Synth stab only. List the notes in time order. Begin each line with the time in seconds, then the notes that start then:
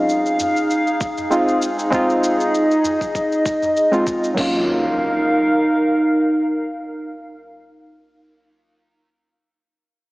Already playing: G#3 C4 D#4 F4
1.30 G#3 C4 D#4 F4
1.90 G#3 C4 D#4 F4
3.91 G#3 C4 D#4 F4
4.34 F#3 A#3 C#4
4.40 F4